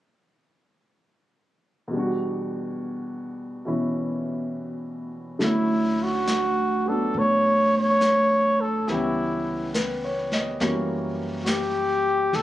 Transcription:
1.88 5.37 E2 soft
1.88 3.63 B2 soft
1.93 5.40 G3 soft
1.93 5.41 D4 soft
1.99 5.43 F#4 soft
3.65 5.39 B2 soft
3.65 5.40 E3 soft
3.65 5.40 C#4 soft
3.65 5.40 E4 soft
5.39 7.10 D2 medium
5.39 8.87 D3 soft
5.39 6.84 F#3 soft
5.39 8.88 A3 soft
5.39 8.89 C#4 soft
5.39 brush sweep soft
5.39 snare soft
5.44 6.05 E4 medium
5.44 8.89 E4 soft
6.03 6.90 F#4 medium
6.27 snare soft
6.27 hi-hat pedal soft
6.86 8.87 F#3 soft
6.86 8.88 B3 soft
6.86 8.89 D4 soft
6.86 7.20 A4 medium
7.14 8.83 A2 medium
7.14 brush sweep soft
7.18 7.75 C#5 medium
7.77 8.62 C#5 medium
8.01 snare soft
8.01 hi-hat pedal soft
8.61 8.91 A4 medium
8.87 10.56 C#2 medium
8.87 10.59 E3 soft
8.87 10.59 G3 soft
8.87 10.61 B3 soft
8.87 10.60 C#4 soft
8.87 9.75 E4 medium
8.87 brush sweep soft
8.87 snare soft
8.91 10.62 G4 soft
9.74 10.28 B4 soft
9.74 snare soft
9.74 hi-hat pedal soft
10.04 10.48 C#5 soft
10.32 10.77 D#5 soft
10.32 snare soft
10.60 12.29 F#2 medium
10.60 12.33 E3 soft
10.60 12.34 F#3 medium
10.60 12.33 G3 soft
10.60 12.33 A#3 soft
10.60 12.34 C#4 soft
10.60 brush sweep soft
10.60 snare soft
11.44 11.50 F#4 soft
11.44 12.37 G4 medium
11.44 snare soft
11.44 hi-hat pedal soft
12.33 12.42 B1 medium
12.33 12.42 A4 medium
12.33 brush sweep soft
12.33 snare soft

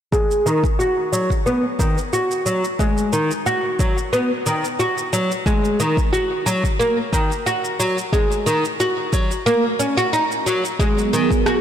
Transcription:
0.12 0.45 G#3 medium
0.12 kick loud
0.12 shaker soft
0.31 shaker soft
0.46 0.63 D#3 medium
0.46 shaker medium
0.64 kick medium
0.64 shaker soft
0.79 1.11 F#4 medium
0.79 shaker soft
1.13 1.30 F#3 medium
1.13 shaker medium
1.30 kick medium
1.30 shaker soft
1.46 1.63 B3 medium
1.46 shaker soft
1.79 1.96 D#3 medium
1.79 kick medium
1.79 shaker medium
1.98 shaker soft
2.13 2.45 F#4 medium
2.13 shaker soft
2.31 shaker soft
2.46 2.63 F#3 medium
2.46 shaker medium
2.64 shaker soft
2.79 3.11 G#3 medium
2.79 kick loud
2.79 shaker soft
2.98 shaker soft
3.13 3.30 D#3 medium
3.13 shaker medium
3.31 shaker soft
3.46 3.78 F#4 medium
3.46 shaker soft
3.79 3.96 F#3 medium
3.79 kick loud
3.79 shaker medium
3.98 shaker soft
4.13 4.30 B3 medium
4.13 shaker soft
4.46 4.63 D#3 medium
4.46 shaker medium
4.65 shaker soft
4.80 5.11 F#4 medium
4.80 shaker soft
4.98 shaker soft
5.13 5.30 F#3 medium
5.13 shaker medium
5.32 shaker soft
5.46 5.78 G#3 medium
5.46 kick loud
5.46 shaker soft
5.65 shaker soft
5.80 5.97 D#3 medium
5.80 shaker medium
5.97 kick medium
5.97 shaker soft
6.13 6.45 F#4 medium
6.13 shaker soft
6.46 6.63 F#3 medium
6.46 shaker medium
6.64 kick medium
6.64 shaker soft
6.79 6.96 A#3 medium
6.79 shaker soft
7.13 7.30 D#3 medium
7.13 kick medium
7.13 shaker medium
7.32 shaker soft
7.46 7.78 F#4 medium
7.46 shaker soft
7.65 shaker soft
7.80 7.97 F#3 medium
7.80 shaker medium
7.98 shaker soft
8.13 8.45 G#3 medium
8.13 kick loud
8.13 shaker soft
8.32 shaker soft
8.46 8.63 D#3 medium
8.46 shaker medium
8.65 shaker soft
8.80 9.12 F#4 medium
8.80 shaker soft
9.13 9.30 F#3 medium
9.13 kick loud
9.13 shaker medium
9.31 shaker soft
9.46 9.63 A#3 medium
9.46 shaker soft
9.79 9.96 C#4 medium
9.79 shaker medium
9.97 10.06 F#4 medium
9.97 shaker soft
10.13 10.23 D#4 medium
10.13 shaker soft
10.32 shaker soft
10.46 10.62 F#3 medium
10.46 shaker medium
10.65 shaker soft
10.79 11.61 F#3 medium
10.79 11.11 G#3 medium
10.79 11.61 B3 medium
10.79 11.61 G#4 medium
10.79 11.61 A#4 medium
10.79 kick loud
10.79 shaker soft
10.98 shaker soft
11.13 11.30 D#3 medium
11.13 shaker medium
11.31 kick medium
11.31 shaker soft
11.46 11.61 F#4 medium
11.46 cross-stick medium
11.46 shaker soft

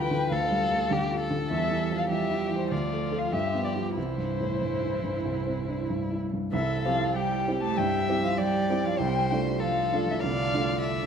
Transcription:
0.00 0.28 D2 medium
0.00 0.11 D3 soft
0.00 1.54 E3 soft
0.00 0.15 G3 medium
0.00 0.24 F4 soft
0.00 0.34 B4 medium
0.00 0.30 G5 medium
0.11 0.43 D3 soft
0.31 1.47 D2 soft
0.31 0.93 A4 medium
0.31 1.19 F5 medium
0.51 0.83 G3 soft
0.71 0.91 A3 soft
0.89 1.23 D3 soft
0.89 1.34 G3 soft
0.89 1.20 G4 medium
1.11 1.43 F4 soft
1.21 2.09 A4 soft
1.30 1.51 D3 soft
1.49 2.68 E2 soft
1.49 2.06 G3 soft
1.49 1.93 E5 medium
1.71 2.03 E3 soft
1.91 2.11 F3 soft
1.97 2.03 F5 medium
2.09 2.43 E3 soft
2.09 2.73 G3 soft
2.09 2.70 G4 soft
2.09 2.55 E5 medium
2.31 2.64 E4 soft
2.51 2.71 E3 soft
2.58 2.73 C5 soft
2.71 3.31 D2 soft
2.71 3.32 F3 soft
2.71 3.34 F4 soft
2.71 3.20 D5 medium
2.91 3.25 A3 soft
3.12 3.31 F4 soft
3.12 3.31 A4 soft
3.18 3.33 F5 soft
3.32 3.95 G2 soft
3.32 3.98 F3 soft
3.32 3.97 G4 soft
3.32 3.64 E5 soft
3.55 3.89 B3 soft
3.64 3.72 D5 soft
3.75 3.95 F4 soft
3.75 3.95 G4 soft
3.97 5.22 C2 soft
3.97 6.32 E3 soft
3.97 6.18 E4 soft
3.97 5.86 C5 medium
4.18 4.53 G2 soft
4.40 4.62 A2 soft
4.62 4.96 G2 soft
4.83 5.17 E4 soft
5.03 5.38 G2 soft
5.25 6.49 C2 soft
5.47 5.81 C4 soft
5.69 5.90 D4 soft
5.90 6.24 G2 soft
6.12 6.45 E4 soft
6.33 6.54 G2 soft
6.52 6.83 C2 soft
6.52 6.60 E3 soft
6.52 7.17 A4 medium
6.52 6.82 E5 medium
6.83 7.15 F3 soft
6.83 7.43 C4 soft
6.83 7.43 E4 soft
6.83 7.43 G4 soft
6.83 7.14 F5 medium
7.15 7.61 G3 medium
7.15 7.76 G4 soft
7.15 7.61 G5 medium
7.47 7.75 C4 soft
7.47 7.75 E4 soft
7.47 7.75 G4 soft
7.62 7.78 A3 medium
7.62 7.79 A5 medium
7.77 8.07 G2 soft
7.77 8.23 G3 medium
7.77 8.40 E5 medium
7.77 8.23 G5 medium
8.09 8.66 C4 soft
8.09 8.66 E4 soft
8.09 8.66 G4 soft
8.23 8.40 F3 medium
8.23 8.38 F5 medium
8.38 8.86 G3 medium
8.38 9.00 D5 medium
8.38 8.87 G5 medium
8.70 8.97 C4 soft
8.70 8.97 E4 soft
8.70 8.98 G4 soft
8.84 9.02 F3 medium
8.84 9.01 F5 medium
8.99 9.29 C2 soft
8.99 9.31 G3 medium
8.99 9.61 C5 medium
8.99 9.29 G5 medium
9.30 9.64 G3 soft
9.30 9.88 A3 soft
9.30 9.88 D4 soft
9.30 9.89 F4 soft
9.30 9.38 G5 medium
9.59 10.07 F3 soft
9.59 10.22 A4 soft
9.59 10.07 F5 medium
9.93 10.20 A3 soft
9.93 10.20 D4 soft
9.93 10.20 F4 soft
10.08 10.22 E3 soft
10.08 10.16 E5 medium
10.20 10.53 C2 soft
10.20 11.06 D3 soft
10.20 11.06 D5 medium
10.20 10.81 F5 medium
10.54 11.06 A3 soft
10.54 11.06 D4 soft
10.54 11.06 F4 soft
10.82 11.06 E5 medium

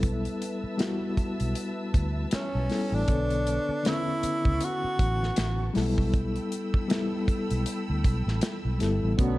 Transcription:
0.00 0.27 B1 medium
0.00 0.63 G3 medium
0.00 0.63 B3 medium
0.00 0.64 E4 medium
0.00 0.64 A4 medium
0.00 5.71 B4 medium
0.00 3.05 E5 medium
0.00 5.71 A5 medium
0.00 3.05 E6 medium
0.00 kick loud
0.00 closed hi-hat medium
0.25 closed hi-hat soft
0.42 closed hi-hat medium
0.64 muted fingered electric bass stroke soft
0.77 2.06 G3 medium
0.77 2.06 B3 medium
0.77 2.07 E4 medium
0.77 2.07 F#4 medium
0.77 snare medium
0.77 closed hi-hat medium
1.17 muted fingered electric bass stroke soft
1.17 kick medium
1.17 closed hi-hat medium
1.40 1.53 B1 medium
1.40 closed hi-hat medium
1.55 closed hi-hat medium
1.94 2.25 D2 medium
1.94 kick medium
1.94 closed hi-hat medium
2.31 2.96 C#4 medium
2.31 muted fingered electric bass stroke soft
2.31 snare loud
2.31 closed hi-hat medium
2.55 2.68 B1 medium
2.68 3.02 G3 medium
2.68 3.03 B3 medium
2.68 3.03 E4 medium
2.68 3.04 A4 medium
2.68 snare soft
2.68 open hi-hat medium
2.92 3.05 A1 medium
2.92 3.86 D4 medium
3.07 3.57 B1 loud
3.07 3.71 D3 medium
3.07 3.72 B3 medium
3.07 3.73 A4 medium
3.07 3.72 C#5 medium
3.07 5.73 C#6 medium
3.07 kick loud
3.07 closed hi-hat medium
3.30 closed hi-hat soft
3.47 closed hi-hat medium
3.69 muted fingered electric bass stroke soft
3.83 5.11 D3 medium
3.83 5.11 B3 medium
3.83 5.12 C#4 medium
3.83 5.13 E4 medium
3.83 snare loud
3.83 closed hi-hat medium
3.88 4.66 E4 loud
4.23 muted fingered electric bass stroke soft
4.23 closed hi-hat medium
4.45 4.58 C#2 medium
4.45 kick medium
4.61 5.77 F#4 loud
4.61 closed hi-hat medium
4.84 muted fingered electric bass stroke soft
4.99 5.30 A1 medium
4.99 kick medium
4.99 closed hi-hat medium
5.23 snare soft
5.36 5.69 A1 medium
5.36 snare loud
5.36 closed hi-hat medium
5.74 6.38 B1 medium
5.74 6.73 G3 medium
5.74 5.83 A3 medium
5.74 6.74 E4 medium
5.74 9.15 A4 medium
5.74 6.75 A4 loud
5.74 9.15 G5 medium
5.74 9.15 B5 medium
5.74 9.15 E6 medium
5.74 snare soft
5.74 open hi-hat medium
5.81 6.77 B3 medium
5.98 kick medium
6.14 kick loud
6.14 closed hi-hat medium
6.36 closed hi-hat soft
6.52 closed hi-hat medium
6.74 muted fingered electric bass stroke soft
6.74 kick medium
6.88 8.16 G3 medium
6.88 8.17 B3 medium
6.88 8.17 E4 medium
6.88 8.18 A4 medium
6.88 snare medium
6.88 closed hi-hat medium
7.28 muted fingered electric bass stroke soft
7.28 kick medium
7.28 closed hi-hat medium
7.50 7.64 B1 medium
7.50 closed hi-hat medium
7.66 closed hi-hat medium
7.90 8.02 D2 medium
8.04 8.22 B1 medium
8.04 kick medium
8.04 closed hi-hat medium
8.27 8.39 A1 medium
8.27 snare soft
8.41 snare loud
8.41 closed hi-hat medium
8.65 8.78 B1 medium
8.78 8.99 G1 medium
8.78 9.12 G3 medium
8.78 9.13 B3 medium
8.78 9.13 E4 medium
8.78 9.14 A4 medium
8.78 snare soft
8.78 closed hi-hat medium
9.03 9.16 A1 medium
9.17 9.38 B1 loud
9.17 9.38 D3 medium
9.17 9.38 F#3 medium
9.17 9.38 A3 medium
9.17 9.38 B3 medium
9.17 9.38 C#4 medium
9.17 9.38 F#4 medium
9.17 9.38 A4 medium
9.17 9.38 C#5 medium
9.17 9.38 B5 medium
9.17 9.38 C#6 medium
9.17 kick loud
9.17 closed hi-hat medium

